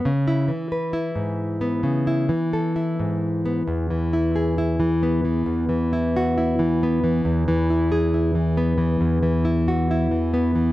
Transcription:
\new Staff \with { instrumentName = "Nylon-string guitar" } { \time 4/4 \key e \major \tempo 4 = 67 << { r16 e'8 b'16 e'8. b8 e'8 a'16 e'8. b16 | r8 e'16 gis'16 e'8 b4 e'16 fis'16 e'8 b8 | r8 e'16 gis'16 e'8 b4 e'16 fis'16 e'8 b8 | } \\ { cis8 e8. gis,8. cis8 e8. gis,8. | e,16 e4 e8 e16 e,16 e4 e8 e16 | e,16 e4 e8 e16 e,16 e4 e8 e16 | } >> }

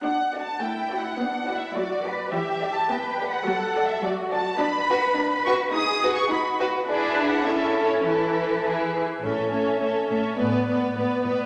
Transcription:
<<
  \new Staff \with { instrumentName = "Violin section" } { \time 2/4 \key d \major \tempo 4 = 105 \tuplet 3/2 { fis''4 a''8 g''4 fis''8~ } | \tuplet 3/2 { fis''4 e''8 } d''4 | \tuplet 3/2 { e''4 a''8 g''4 fis''8~ } | \tuplet 3/2 { fis''4 e''8 } d''8 a''8 |
\key a \major b''4. cis'''8 | \tuplet 3/2 { dis'''4 cis'''8 } b''8 r8 | \tuplet 3/2 { d''4 fis''8 e''4 cis''8 } | b'4. r8 |
e''8 e''8 e''8 e''8 | d''8 d''8 d''8 d''8 | }
  \new Staff \with { instrumentName = "Violin section" } { \time 2/4 \key d \major r8 <fis' d''>8 r8 <fis' d''>8 | r8 <fis' d''>8 r8 <fis' d''>8 | r8 <g' d''>8 r8 <g' d''>8 | r8 <fis' d''>8 r8 <fis' d''>8 |
\key a \major r8 <fis' b'>16 r8. <fis' b'>16 r16 | r8 <fis' b'>16 r8. <fis' b'>16 r16 | <e' gis'>4 <e' a'>4 | <e' a'>4 <e' gis'>8 r8 |
a'8 a'8 a'8 a'8 | b'8 b'8 b'8 b'8 | }
  \new Staff \with { instrumentName = "Cello section" } { \time 2/4 \key d \major r4 e'4 | d'8 e'8 fis'8 b'8 | g'4 b'4 | a'4 fis'4 |
\key a \major b'2 | gis'4 fis'4 | b'4 a'4 | b'4. r8 |
a,8 a,8 a,8 a,8 | a,8 a,8 a,8 a,8 | }
  \new Staff \with { instrumentName = "Viola section" } { \time 2/4 \key d \major d'4 a4 | b4 fis4 | e4 b4 | fis4 fis4 |
\key a \major d'4 d'4 | dis'4 dis'4 | d'4 cis'4 | e4 e8 r8 |
cis'8 cis'8 cis'8 cis'8 | b8 b8 b8 b8 | }
  \new Staff \with { instrumentName = "Double bass section" } { \clef bass \time 2/4 \key d \major r2 | r2 | r2 | r2 |
\key a \major r2 | r2 | r2 | r2 |
a,,8 r4. | a,,8 r4. | }
>>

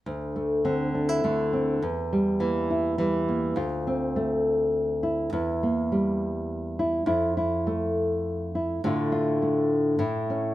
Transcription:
\new Staff \with { instrumentName = "Nylon-string guitar" } { \time 3/4 \key d \minor \tempo 4 = 103 << { r8 a8 c'8 d'16 e'16 a8 c'8 | r8 g8 bes8 e'8 g8 bes8 | f'8 c'8 a4. e'8 | e'8 bes8 g4. e'8 |
e'8 e'8 a4. e'8 | <d a f'>8 f'8 a4 e'8 cis'8 | } \\ { d,4 d4 d4 | e,4 e4 e4 | d,2. | e,2. |
f,2. | a,2 a,4 | } >> }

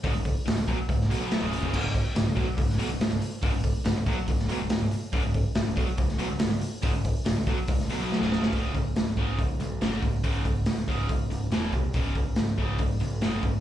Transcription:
<<
  \new Staff \with { instrumentName = "Overdriven electric guitar" } { \clef bass \time 4/4 \key cis \minor \tempo 4 = 141 <cis, gis,>16 <cis, gis,>8 r16 <cis, gis,>16 <cis, gis,>16 <b, fis>16 r16 <cis, gis,>8 <b, fis>16 <b, fis b>8 <cis, gis, cis>8 <fis, cis>16 | <cis, gis,>16 <cis, gis,>8 r16 <cis, gis,>16 <cis, gis,>16 <b, fis>16 r16 <cis, gis,>8 <b, fis>16 <cis, gis,>16 <cis, gis,>16 <cis, gis,>16 r8 | <cis, gis,>16 <cis, gis,>8 r16 <cis, gis,>16 <cis, gis,>16 <b, fis>16 r16 <cis, gis,>8 <b, fis>16 <cis, gis,>16 <cis, gis,>16 <cis, gis,>16 r8 | <cis, gis,>16 <cis, gis,>8 r16 <cis, gis,>16 <cis, gis,>16 <b, fis>16 r16 <cis, gis,>8 <b, fis>16 <cis, gis,>16 <cis, gis,>16 <cis, gis,>16 r8 |
<cis, gis,>16 <cis, gis,>8 r16 <cis, gis,>16 <cis, gis,>16 <b, fis>16 r16 <cis, gis,>8 <b, fis>16 <b, fis b>8 <cis, gis, cis>8 <fis, cis>16 | <cis, gis, cis>8 <cis, gis,>8 <cis, gis,>8 <cis, gis, cis>8 <cis, gis,>8 <cis, gis,>8 <cis, gis, cis>8 <cis, gis,>8 | <cis, gis, cis>8 <cis, gis,>8 <cis, gis,>8 <cis, gis, cis>8 <cis, gis,>8 <cis, gis,>8 <e, b, e>8 <e, b,>8 | <cis, gis, cis>8 <cis, gis,>8 <cis, gis,>8 <cis, gis, cis>8 <cis, gis,>8 <cis, gis,>8 <cis, gis, cis>8 <cis, gis,>8 | }
  \new Staff \with { instrumentName = "Overdriven electric guitar" } { \clef bass \time 4/4 \key cis \minor <cis, gis,>16 <cis, gis,>8 r16 <cis, gis,>16 <cis, gis,>16 <b, fis>16 r16 <cis, gis,>8 <b, fis>16 <b, fis b>8 <cis, gis, cis>8 <fis, cis>16 | <cis, gis,>16 <cis, gis,>8 r16 <cis, gis,>16 <cis, gis,>16 <b, fis>16 r16 <cis, gis,>8 <b, fis>16 <cis, gis,>16 <cis, gis,>16 <cis, gis,>16 r8 | <cis, gis,>16 <cis, gis,>8 r16 <cis, gis,>16 <cis, gis,>16 <b, fis>16 r16 <cis, gis,>8 <b, fis>16 <cis, gis,>16 <cis, gis,>16 <cis, gis,>16 r8 | <cis, gis,>16 <cis, gis,>8 r16 <cis, gis,>16 <cis, gis,>16 <b, fis>16 r16 <cis, gis,>8 <b, fis>16 <cis, gis,>16 <cis, gis,>16 <cis, gis,>16 r8 |
<cis, gis,>16 <cis, gis,>8 r16 <cis, gis,>16 <cis, gis,>16 <b, fis>16 r16 <cis, gis,>8 <b, fis>16 <b, fis b>8 <cis, gis, cis>8 <fis, cis>16 | <cis, gis, cis>8 <cis, gis,>8 <cis, gis,>8 <cis, gis, cis>8 <cis, gis,>8 <cis, gis,>8 <cis, gis, cis>8 <cis, gis,>8 | <cis, gis, cis>8 <cis, gis,>8 <cis, gis,>8 <cis, gis, cis>8 <cis, gis,>8 <cis, gis,>8 <e, b, e>8 <e, b,>8 | <cis, gis, cis>8 <cis, gis,>8 <cis, gis,>8 <cis, gis, cis>8 <cis, gis,>8 <cis, gis,>8 <cis, gis, cis>8 <cis, gis,>8 | }
  \new Staff \with { instrumentName = "Picked electric bass" } { \clef bass \time 4/4 \key cis \minor cis,,16 cis,,8 r16 cis,,16 cis,,16 b,,16 r16 cis,,8 b,,16 b,,8 cis,,8 fis,,16 | cis,,16 cis,,8 r16 cis,,16 cis,,16 b,,16 r16 cis,,8 b,,16 cis,,16 cis,,16 cis,,16 r8 | cis,,16 cis,,8 r16 cis,,16 cis,,16 b,,16 r16 cis,,8 b,,16 cis,,16 cis,,16 cis,,16 r8 | cis,,16 cis,,8 r16 cis,,16 cis,,16 b,,16 r16 cis,,8 b,,16 cis,,16 cis,,16 cis,,16 r8 |
cis,,16 cis,,8 r16 cis,,16 cis,,16 b,,16 r16 cis,,8 b,,16 b,,8 cis,,8 fis,,16 | cis,,8 cis,,8 cis,,8 cis,,8 cis,,8 b,,8 fis,,8 cis,,8 | cis,,8 cis,,8 cis,,8 cis,,8 cis,,8 cis,,8 e,,8 bis,,8 | cis,,8 cis,,8 cis,,8 cis,,8 cis,,8 b,,8 fis,,8 cis,,8 | }
  \new DrumStaff \with { instrumentName = "Drums" } \drummode { \time 4/4 <hho bd>8 <hho bd>8 <hho sn>8 <hho bd>8 <hho bd>16 sn16 hho8 <hho sn>8 hho16 bd16 | <cymc bd>8 <hho bd>8 <hho sn>8 <hho bd>8 <hho bd>16 sn16 hho8 <hho sn>8 hho8 | <hho bd>8 <hho bd>8 <hho sn>8 <hho bd>8 <hho bd>16 sn16 hho8 <hho sn>8 hho8 | <hho bd>8 <hho bd>8 <hho sn>8 <hho bd>8 <hho bd>16 sn16 hho8 <hho sn>8 hho8 |
<hho bd>8 <hho bd>8 <hho sn>8 <hho bd>8 <hho bd>16 sn16 hho8 sn16 sn16 sn16 sn16 | <hho bd>8 <hho bd>8 <hho sn>8 <hho bd>8 <hho bd>8 hho8 <hho sn>8 <hho bd>8 | <hho bd>8 <hho bd>8 <hho sn>8 <hho bd>8 <hho bd>8 hho8 <hho sn>8 <hho bd>8 | <hho bd>8 <hho bd>8 <hho sn>8 <hho bd>8 <hho bd>8 hho8 <hho sn>8 <hho bd>8 | }
>>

